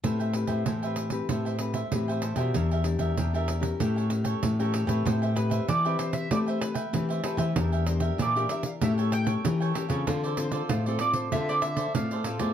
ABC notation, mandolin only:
X:1
M:4/4
L:1/16
Q:1/4=96
K:Am
V:1 name="Mandolin"
z16 | z16 | z2 B2 d2 c e d c B4 z2 | z2 c2 d2 e f e2 g4 z2 |
z2 c4 d c e d e2 f3 z |]